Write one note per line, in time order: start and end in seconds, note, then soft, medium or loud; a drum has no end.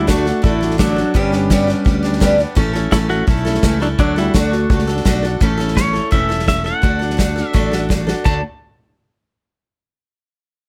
0.00 0.31 D2 medium
0.07 0.26 D3 medium
0.07 0.26 A3 medium
0.07 0.42 A3 medium
0.07 0.26 D4 medium
0.07 0.41 F#4 loud
0.07 0.26 F#4 medium
0.07 0.24 A4 medium
0.07 kick medium
0.07 snare loud
0.07 hi-hat pedal medium
0.25 0.42 D4 soft
0.25 0.43 F#4 soft
0.25 0.44 A4 soft
0.25 snare soft
0.42 1.02 A1 medium
0.42 0.61 A3 medium
0.42 0.77 A3 medium
0.42 0.61 D4 medium
0.42 0.77 E4 medium
0.42 0.61 F#4 medium
0.42 0.59 A4 medium
0.42 kick loud
0.42 snare soft
0.61 0.78 D4 soft
0.61 0.79 F#4 soft
0.61 0.79 A4 soft
0.61 snare soft
0.71 snare soft
0.78 0.96 D3 medium
0.78 1.13 F#3 medium
0.78 0.97 A3 medium
0.78 1.16 D4 medium
0.78 0.97 D4 medium
0.78 0.97 F#4 medium
0.78 0.95 A4 medium
0.78 kick medium
0.78 snare loud
0.78 hi-hat pedal medium
0.96 1.15 D4 soft
0.96 1.15 F#4 soft
0.96 1.14 A4 soft
0.96 snare soft
1.14 1.73 G1 medium
1.14 1.32 G2 medium
1.14 1.32 D3 medium
1.14 1.33 G3 medium
1.14 2.36 G3 medium
1.14 1.33 B3 medium
1.14 2.35 C#4 medium
1.14 1.32 D4 medium
1.14 1.31 G4 medium
1.14 kick loud
1.14 snare soft
1.32 1.50 G3 soft
1.32 1.50 B3 soft
1.32 1.51 D4 medium
1.32 1.50 G4 medium
1.32 snare soft
1.50 1.68 G2 medium
1.50 1.68 D3 medium
1.50 1.68 G3 medium
1.50 1.69 B3 medium
1.50 1.67 D4 medium
1.50 1.66 G4 medium
1.50 kick medium
1.50 snare loud
1.50 hi-hat pedal medium
1.67 1.83 G3 soft
1.67 1.85 B3 soft
1.67 1.86 D4 medium
1.67 1.85 G4 medium
1.67 snare soft
1.85 2.44 D2 medium
1.85 2.03 G3 medium
1.85 2.04 B3 medium
1.85 2.03 D4 medium
1.85 2.01 G4 medium
1.85 kick loud
1.85 snare soft
2.03 2.20 G3 soft
2.03 2.20 B3 medium
2.03 2.21 D4 medium
2.03 2.21 G4 medium
2.03 snare soft
2.13 snare soft
2.20 2.39 G2 medium
2.20 2.39 D3 medium
2.20 2.39 G3 medium
2.20 2.39 B3 medium
2.20 2.38 D4 medium
2.20 2.37 G4 medium
2.20 kick medium
2.20 snare loud
2.20 hi-hat pedal medium
2.38 2.56 G3 soft
2.38 2.56 B3 medium
2.38 2.57 D4 medium
2.38 2.56 G4 medium
2.38 snare soft
2.55 2.86 A1 medium
2.55 2.74 A2 medium
2.55 2.74 E3 medium
2.55 2.74 A3 medium
2.55 2.75 C#4 loud
2.55 2.74 E4 medium
2.55 2.72 A4 medium
2.55 kick loud
2.55 snare soft
2.73 2.91 A3 soft
2.73 2.92 C#4 medium
2.73 2.92 E4 medium
2.73 2.92 A4 medium
2.73 snare soft
2.91 3.22 A1 medium
2.91 3.10 A2 medium
2.91 3.10 E3 medium
2.91 2.97 A3 medium
2.91 3.10 A3 medium
2.91 3.10 C#4 medium
2.91 2.97 E4 medium
2.91 3.09 E4 medium
2.91 3.08 A4 medium
2.91 kick medium
2.91 snare loud
2.91 hi-hat pedal medium
3.09 3.26 A3 medium
3.09 3.26 A3 soft
3.09 3.27 C#4 soft
3.09 3.28 E4 soft
3.09 3.28 F#4 loud
3.09 3.27 A4 medium
3.09 snare soft
3.27 3.58 B1 medium
3.27 3.45 A3 medium
3.27 3.78 A3 medium
3.27 3.46 C#4 medium
3.27 3.81 E4 medium
3.27 3.45 E4 medium
3.27 3.44 A4 medium
3.27 kick loud
3.27 snare soft
3.36 snare soft
3.45 3.63 A3 soft
3.45 3.63 C#4 soft
3.45 3.64 E4 medium
3.45 3.63 A4 medium
3.45 snare soft
3.54 snare soft
3.63 3.93 C#2 medium
3.63 3.81 A2 medium
3.63 3.81 E3 medium
3.63 3.81 A3 medium
3.63 3.81 C#4 medium
3.63 3.80 E4 medium
3.63 3.79 A4 medium
3.63 kick medium
3.63 snare loud
3.63 hi-hat pedal medium
3.80 3.87 F#3 medium
3.80 3.98 A3 soft
3.80 3.99 C#4 soft
3.80 3.87 D4 medium
3.80 3.99 E4 medium
3.80 3.98 A4 medium
3.80 snare soft
3.99 4.28 D2 medium
3.99 4.17 D3 medium
3.99 4.16 F#3 medium
3.99 4.17 A3 medium
3.99 4.18 D4 medium
3.99 4.17 D4 medium
3.99 4.17 F#4 medium
3.99 4.15 A4 medium
3.99 kick loud
3.99 snare soft
4.16 4.34 G3 medium
4.16 4.34 D4 soft
4.16 4.36 E4 medium
4.16 4.34 F#4 medium
4.16 4.34 A4 medium
4.16 snare soft
4.34 4.65 D2 medium
4.34 4.52 D3 medium
4.34 4.52 A3 medium
4.34 4.85 A3 medium
4.34 4.53 D4 medium
4.34 4.52 F#4 medium
4.34 4.88 F#4 medium
4.34 4.50 A4 medium
4.34 kick medium
4.34 snare loud
4.34 hi-hat pedal medium
4.51 4.70 D4 soft
4.51 4.70 F#4 soft
4.51 4.70 A4 soft
4.51 snare soft
4.70 5.00 C#2 medium
4.70 4.88 A3 medium
4.70 4.88 D4 medium
4.70 4.88 F#4 medium
4.70 4.86 A4 medium
4.70 kick loud
4.70 snare soft
4.79 snare soft
4.87 5.05 D4 soft
4.87 5.05 F#4 medium
4.87 5.05 A4 medium
4.87 snare soft
4.97 snare soft
5.05 5.36 B1 medium
5.05 5.23 D3 medium
5.05 5.23 A3 medium
5.05 5.24 D4 medium
5.05 5.23 F#4 medium
5.05 5.21 A4 medium
5.05 kick medium
5.05 snare loud
5.05 hi-hat pedal medium
5.22 5.42 D4 soft
5.22 5.42 F#4 medium
5.22 5.41 A4 medium
5.22 snare soft
5.40 5.99 A1 medium
5.40 5.59 A2 medium
5.40 5.59 E3 medium
5.40 5.59 A3 medium
5.40 5.59 C#4 medium
5.40 5.58 E4 medium
5.40 5.56 A4 medium
5.40 kick loud
5.40 snare soft
5.57 5.74 A3 soft
5.57 5.75 C#4 medium
5.57 5.76 E4 medium
5.57 5.76 A4 medium
5.57 snare soft
5.68 snare soft
5.75 5.93 A3 medium
5.75 5.94 C#4 medium
5.75 5.93 E4 medium
5.75 5.92 A4 medium
5.75 6.10 C#5 medium
5.75 kick medium
5.75 snare loud
5.75 hi-hat pedal medium
5.93 6.11 A3 soft
5.93 6.11 C#4 soft
5.93 6.12 E4 soft
5.93 6.12 A4 soft
5.93 snare soft
6.11 6.70 E1 medium
6.11 6.29 A2 medium
6.11 6.30 E3 medium
6.11 6.30 A3 medium
6.11 6.30 C#4 medium
6.11 6.29 E4 medium
6.11 6.28 A4 medium
6.11 6.47 E5 medium
6.11 kick loud
6.11 snare soft
6.29 6.45 A3 soft
6.29 6.47 C#4 soft
6.29 6.48 E4 medium
6.29 6.47 A4 soft
6.29 snare soft
6.39 snare soft
6.46 6.65 A3 medium
6.46 6.65 C#4 medium
6.46 6.66 E5 medium
6.46 kick medium
6.46 snare loud
6.46 hi-hat pedal medium
6.64 6.82 A3 soft
6.64 6.83 C#4 soft
6.64 6.83 E4 soft
6.64 6.83 A4 medium
6.64 7.48 F#5 medium
6.64 snare soft
6.82 7.41 D2 medium
6.82 7.00 D3 medium
6.82 7.01 A3 medium
6.82 7.01 D4 medium
6.82 7.00 F#4 medium
6.82 6.98 A4 medium
6.82 kick loud
6.82 snare soft
6.99 7.17 D4 soft
6.99 7.18 F#4 soft
6.99 7.18 A4 medium
6.99 snare soft
7.10 snare soft
7.17 7.36 A3 medium
7.17 7.36 D4 medium
7.17 7.36 F#4 medium
7.17 7.34 A4 medium
7.17 kick medium
7.17 snare loud
7.17 hi-hat pedal medium
7.36 7.54 D4 soft
7.36 7.54 F#4 medium
7.36 7.54 A4 soft
7.36 snare soft
7.48 7.86 E5 medium
7.53 8.12 A1 medium
7.53 7.72 D3 medium
7.53 7.72 A3 medium
7.53 7.72 D4 medium
7.53 7.72 F#4 medium
7.53 7.70 A4 loud
7.53 kick loud
7.53 snare medium
7.71 7.89 D4 soft
7.71 7.90 F#4 medium
7.71 7.90 A4 medium
7.71 snare medium
7.89 8.07 A3 medium
7.89 8.08 D4 medium
7.89 8.07 F#4 medium
7.89 8.05 A4 medium
7.89 kick medium
7.89 snare medium
7.89 hi-hat pedal medium
8.07 8.25 D4 soft
8.07 8.25 F#4 medium
8.07 8.25 A4 medium
8.07 snare medium
8.24 8.42 D2 medium
8.24 8.39 D3 medium
8.24 8.40 A3 medium
8.24 8.40 D4 medium
8.24 8.40 F#4 medium
8.24 8.40 A4 medium
8.24 8.42 A5 medium
8.24 kick medium
8.24 crash medium